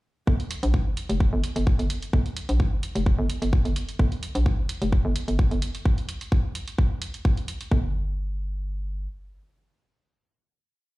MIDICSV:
0, 0, Header, 1, 3, 480
1, 0, Start_track
1, 0, Key_signature, -2, "minor"
1, 0, Tempo, 465116
1, 283, Time_signature, 4, 2, 24, 8
1, 11323, End_track
2, 0, Start_track
2, 0, Title_t, "FM bass"
2, 0, Program_c, 0, 39
2, 282, Note_on_c, 0, 31, 96
2, 388, Note_off_c, 0, 31, 0
2, 650, Note_on_c, 0, 34, 94
2, 888, Note_on_c, 0, 31, 99
2, 904, Note_off_c, 0, 34, 0
2, 981, Note_off_c, 0, 31, 0
2, 1130, Note_on_c, 0, 29, 94
2, 1324, Note_off_c, 0, 29, 0
2, 1371, Note_on_c, 0, 31, 101
2, 1462, Note_off_c, 0, 31, 0
2, 1609, Note_on_c, 0, 31, 95
2, 1702, Note_off_c, 0, 31, 0
2, 1849, Note_on_c, 0, 31, 90
2, 1941, Note_off_c, 0, 31, 0
2, 2202, Note_on_c, 0, 31, 96
2, 2308, Note_off_c, 0, 31, 0
2, 2570, Note_on_c, 0, 34, 92
2, 2809, Note_on_c, 0, 31, 103
2, 2824, Note_off_c, 0, 34, 0
2, 2901, Note_off_c, 0, 31, 0
2, 3049, Note_on_c, 0, 29, 95
2, 3244, Note_off_c, 0, 29, 0
2, 3288, Note_on_c, 0, 31, 103
2, 3381, Note_off_c, 0, 31, 0
2, 3528, Note_on_c, 0, 31, 92
2, 3621, Note_off_c, 0, 31, 0
2, 3768, Note_on_c, 0, 31, 92
2, 3861, Note_off_c, 0, 31, 0
2, 4121, Note_on_c, 0, 31, 99
2, 4227, Note_off_c, 0, 31, 0
2, 4490, Note_on_c, 0, 34, 94
2, 4731, Note_on_c, 0, 31, 103
2, 4747, Note_off_c, 0, 34, 0
2, 4823, Note_off_c, 0, 31, 0
2, 4971, Note_on_c, 0, 29, 99
2, 5165, Note_off_c, 0, 29, 0
2, 5211, Note_on_c, 0, 31, 103
2, 5302, Note_off_c, 0, 31, 0
2, 5449, Note_on_c, 0, 31, 93
2, 5542, Note_off_c, 0, 31, 0
2, 5689, Note_on_c, 0, 31, 94
2, 5782, Note_off_c, 0, 31, 0
2, 7962, Note_on_c, 0, 31, 97
2, 9361, Note_off_c, 0, 31, 0
2, 11323, End_track
3, 0, Start_track
3, 0, Title_t, "Drums"
3, 282, Note_on_c, 9, 36, 111
3, 386, Note_off_c, 9, 36, 0
3, 411, Note_on_c, 9, 42, 41
3, 514, Note_off_c, 9, 42, 0
3, 522, Note_on_c, 9, 42, 83
3, 625, Note_off_c, 9, 42, 0
3, 651, Note_on_c, 9, 42, 53
3, 754, Note_off_c, 9, 42, 0
3, 762, Note_on_c, 9, 36, 110
3, 866, Note_off_c, 9, 36, 0
3, 1002, Note_on_c, 9, 42, 85
3, 1105, Note_off_c, 9, 42, 0
3, 1131, Note_on_c, 9, 42, 50
3, 1234, Note_off_c, 9, 42, 0
3, 1242, Note_on_c, 9, 36, 108
3, 1346, Note_off_c, 9, 36, 0
3, 1482, Note_on_c, 9, 42, 85
3, 1585, Note_off_c, 9, 42, 0
3, 1610, Note_on_c, 9, 42, 50
3, 1714, Note_off_c, 9, 42, 0
3, 1722, Note_on_c, 9, 36, 111
3, 1825, Note_off_c, 9, 36, 0
3, 1850, Note_on_c, 9, 42, 42
3, 1954, Note_off_c, 9, 42, 0
3, 1961, Note_on_c, 9, 42, 87
3, 2064, Note_off_c, 9, 42, 0
3, 2090, Note_on_c, 9, 42, 52
3, 2193, Note_off_c, 9, 42, 0
3, 2201, Note_on_c, 9, 36, 115
3, 2305, Note_off_c, 9, 36, 0
3, 2330, Note_on_c, 9, 42, 40
3, 2433, Note_off_c, 9, 42, 0
3, 2441, Note_on_c, 9, 42, 86
3, 2544, Note_off_c, 9, 42, 0
3, 2570, Note_on_c, 9, 42, 50
3, 2673, Note_off_c, 9, 42, 0
3, 2682, Note_on_c, 9, 36, 115
3, 2785, Note_off_c, 9, 36, 0
3, 2921, Note_on_c, 9, 42, 92
3, 3024, Note_off_c, 9, 42, 0
3, 3050, Note_on_c, 9, 42, 51
3, 3153, Note_off_c, 9, 42, 0
3, 3161, Note_on_c, 9, 36, 114
3, 3264, Note_off_c, 9, 36, 0
3, 3401, Note_on_c, 9, 42, 90
3, 3504, Note_off_c, 9, 42, 0
3, 3530, Note_on_c, 9, 42, 50
3, 3634, Note_off_c, 9, 42, 0
3, 3641, Note_on_c, 9, 36, 121
3, 3745, Note_off_c, 9, 36, 0
3, 3770, Note_on_c, 9, 42, 41
3, 3873, Note_off_c, 9, 42, 0
3, 3881, Note_on_c, 9, 42, 92
3, 3984, Note_off_c, 9, 42, 0
3, 4010, Note_on_c, 9, 42, 51
3, 4113, Note_off_c, 9, 42, 0
3, 4122, Note_on_c, 9, 36, 122
3, 4225, Note_off_c, 9, 36, 0
3, 4251, Note_on_c, 9, 42, 39
3, 4354, Note_off_c, 9, 42, 0
3, 4362, Note_on_c, 9, 42, 93
3, 4466, Note_off_c, 9, 42, 0
3, 4491, Note_on_c, 9, 42, 50
3, 4595, Note_off_c, 9, 42, 0
3, 4602, Note_on_c, 9, 36, 120
3, 4706, Note_off_c, 9, 36, 0
3, 4842, Note_on_c, 9, 42, 93
3, 4945, Note_off_c, 9, 42, 0
3, 4971, Note_on_c, 9, 42, 49
3, 5074, Note_off_c, 9, 42, 0
3, 5082, Note_on_c, 9, 36, 117
3, 5186, Note_off_c, 9, 36, 0
3, 5322, Note_on_c, 9, 42, 91
3, 5425, Note_off_c, 9, 42, 0
3, 5450, Note_on_c, 9, 42, 49
3, 5554, Note_off_c, 9, 42, 0
3, 5562, Note_on_c, 9, 36, 123
3, 5665, Note_off_c, 9, 36, 0
3, 5690, Note_on_c, 9, 42, 39
3, 5793, Note_off_c, 9, 42, 0
3, 5801, Note_on_c, 9, 42, 92
3, 5904, Note_off_c, 9, 42, 0
3, 5930, Note_on_c, 9, 42, 49
3, 6034, Note_off_c, 9, 42, 0
3, 6042, Note_on_c, 9, 36, 124
3, 6145, Note_off_c, 9, 36, 0
3, 6170, Note_on_c, 9, 42, 39
3, 6273, Note_off_c, 9, 42, 0
3, 6281, Note_on_c, 9, 42, 92
3, 6384, Note_off_c, 9, 42, 0
3, 6410, Note_on_c, 9, 42, 49
3, 6513, Note_off_c, 9, 42, 0
3, 6522, Note_on_c, 9, 36, 121
3, 6625, Note_off_c, 9, 36, 0
3, 6761, Note_on_c, 9, 42, 92
3, 6864, Note_off_c, 9, 42, 0
3, 6889, Note_on_c, 9, 42, 50
3, 6992, Note_off_c, 9, 42, 0
3, 7002, Note_on_c, 9, 36, 119
3, 7105, Note_off_c, 9, 36, 0
3, 7241, Note_on_c, 9, 42, 93
3, 7344, Note_off_c, 9, 42, 0
3, 7369, Note_on_c, 9, 42, 48
3, 7473, Note_off_c, 9, 42, 0
3, 7482, Note_on_c, 9, 36, 123
3, 7585, Note_off_c, 9, 36, 0
3, 7610, Note_on_c, 9, 42, 40
3, 7713, Note_off_c, 9, 42, 0
3, 7721, Note_on_c, 9, 42, 93
3, 7824, Note_off_c, 9, 42, 0
3, 7850, Note_on_c, 9, 42, 49
3, 7953, Note_off_c, 9, 42, 0
3, 7962, Note_on_c, 9, 36, 115
3, 8065, Note_off_c, 9, 36, 0
3, 11323, End_track
0, 0, End_of_file